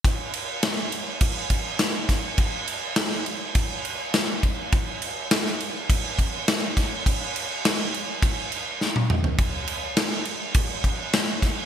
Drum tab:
CC |x-x-x-x-x-x-x-x-|x-x-x-x-x-x-x-x-|x-x-x-x-x-x-x-x-|x-x-x-x-x-x-----|
SD |----o-------o-o-|----oo------o---|----oo------o-o-|----o-------o---|
T1 |----------------|----------------|----------------|-------------o--|
T2 |----------------|----------------|----------------|--------------o-|
FT |----------------|----------------|----------------|---------------o|
BD |o-------o-o---o-|o-------o-----o-|o-------o-o---o-|o-------o-------|

CC |x-x-x-x-x-x-x-x-|
SD |----o-------o-o-|
T1 |----------------|
T2 |----------------|
FT |----------------|
BD |o-------o-o---o-|